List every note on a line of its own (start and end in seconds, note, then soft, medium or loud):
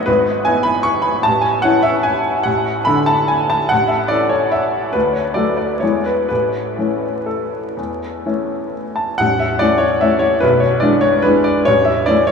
0.00 0.10 B3 medium
0.00 0.10 D#4 medium
0.00 0.10 D#5 medium
0.06 0.45 G#1 medium
0.06 0.46 B4 medium
0.45 1.22 E3 soft
0.45 1.22 B3 soft
0.45 1.22 E4 medium
0.45 0.66 G#5 medium
0.63 0.85 B5 medium
0.83 1.05 C#6 medium
1.02 1.24 B5 medium
1.23 1.64 A1 medium
1.23 1.44 A5 medium
1.41 1.64 G#5 medium
1.62 2.42 E3 soft
1.62 2.42 C#4 soft
1.62 2.42 E4 medium
1.62 1.84 F#5 medium
1.82 2.05 E5 medium
2.03 2.45 G#5 medium
2.43 2.85 A1 medium
2.43 2.86 F#5 medium
2.85 3.67 D3 soft
2.85 3.67 D4 soft
2.85 3.67 A4 medium
2.85 3.07 B5 medium
3.06 3.29 A5 medium
3.28 3.50 G#5 medium
3.50 3.70 A5 medium
3.69 4.10 A1 medium
3.69 3.89 F#5 medium
3.88 4.09 E5 medium
4.08 4.90 E3 soft
4.08 4.90 C#4 soft
4.08 4.91 A4 soft
4.08 4.31 D5 medium
4.29 4.52 C#5 medium
4.52 4.94 E5 medium
4.93 5.35 D2 soft
4.93 5.14 B4 medium
5.13 5.35 C#5 soft
5.34 5.77 F#3 soft
5.34 5.78 A3 soft
5.34 5.78 A4 soft
5.34 5.55 D5 medium
5.57 5.81 D5 medium
5.80 6.28 E2 soft
5.80 6.26 E3 soft
5.80 6.26 G#3 soft
5.80 6.27 E4 soft
5.80 6.05 C#5 medium
6.05 6.27 B4 medium
6.29 6.77 A1 soft
6.29 7.27 B4 medium
6.78 7.74 E3 soft
6.78 7.74 A3 soft
6.78 7.74 C#4 soft
7.26 8.74 A4 soft
7.77 8.24 E2 soft
8.26 9.16 E3 soft
8.26 9.16 A3 soft
8.26 9.16 C#4 soft
8.96 9.18 A5 medium
9.18 9.59 A0 soft
9.18 9.59 A1 medium
9.18 9.39 F#5 medium
9.39 9.60 E5 medium
9.59 9.98 E3 soft
9.59 9.98 A3 soft
9.59 9.98 C#4 soft
9.59 9.80 D5 medium
9.78 10.00 C#5 medium
10.01 10.38 E3 soft
10.01 10.39 A3 soft
10.01 10.39 C#4 soft
10.01 10.22 E5 medium
10.19 10.41 C#5 medium
10.40 10.82 B0 medium
10.40 10.82 B1 medium
10.40 10.61 B4 medium
10.60 10.82 C#5 medium
10.80 11.21 E3 soft
10.80 11.21 G#3 soft
10.80 11.21 D4 medium
10.80 11.03 D5 medium
11.01 11.24 C#5 medium
11.22 11.62 E3 soft
11.22 11.62 G#3 soft
11.22 11.63 D4 soft
11.22 11.45 B4 medium
11.44 11.66 D5 medium
11.65 12.06 A0 medium
11.65 12.06 A1 medium
11.65 11.86 C#5 medium
11.85 12.06 E5 medium
12.06 12.31 E3 soft
12.06 12.31 A3 soft
12.06 12.31 C#4 soft
12.06 12.28 D5 medium
12.27 12.31 C#5 medium